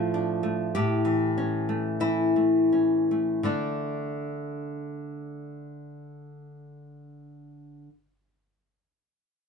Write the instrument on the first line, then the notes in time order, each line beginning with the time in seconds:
nylon-string guitar
Already playing: A2 F3 A3 D4 F4
0.14 D4
0.43 A3
0.75 A2 G4
1.05 E3
1.38 C#4
1.69 A3
2.00 E3 E4
2.36 A3
2.72 C#4
3.11 A3
3.43 D3 A3 D4